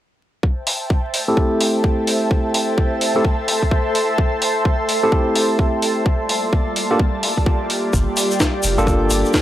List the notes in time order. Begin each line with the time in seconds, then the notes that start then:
0.43 A4 C5 E5 G5 A5, kick
0.67 open hi-hat
0.90 kick
1.03 E5
1.14 A5, open hi-hat
1.28 A3 C4 E4 G4 A4
1.37 kick
1.59 C6, open hi-hat
1.84 kick
2.07 open hi-hat
2.31 kick
2.54 open hi-hat
2.78 kick
3.01 open hi-hat
3.16 A3 C4 E4 G4 A4
3.25 kick
3.48 open hi-hat
3.63 kick
3.71 kick
3.95 open hi-hat
4.18 kick
4.42 open hi-hat
4.65 kick
4.89 open hi-hat
5.03 A3 C4 E4 G4 A4
5.12 kick
5.36 open hi-hat
5.59 kick
5.82 open hi-hat
6.06 G3 A#3 F4 G4 D5 A5, kick
6.29 open hi-hat
6.53 kick
6.57 D5
6.76 open hi-hat
6.91 A#3 D4 F4 G4 A4
7.00 kick
7.23 open hi-hat
7.37 kick
7.46 kick
7.70 open hi-hat
7.93 G1 G5, kick, shaker
8.17 open hi-hat, shaker
8.31 shaker
8.40 kick, snare, shaker
8.63 F1, open hi-hat, shaker
8.78 G1 A#3 D4 F4 G4 A4, shaker
8.87 kick, shaker
9.10 G1, open hi-hat, shaker
9.25 shaker
9.33 kick, snare, shaker